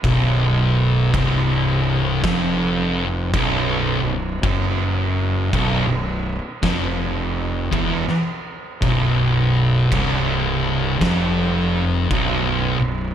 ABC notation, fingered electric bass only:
X:1
M:4/4
L:1/16
Q:"Swing" 1/4=55
K:Clyd
V:1 name="Fingered electric bass" clef=bass
B,,,,4 C,,,4 ^E,,,4 B,,,,2 B,,,,2 | F,,,4 B,,,, B,,,,2 z ^E,,,4 =E,,, z3 | B,,,,4 C,,,4 ^E,,,4 B,,,,2 B,,,,2 |]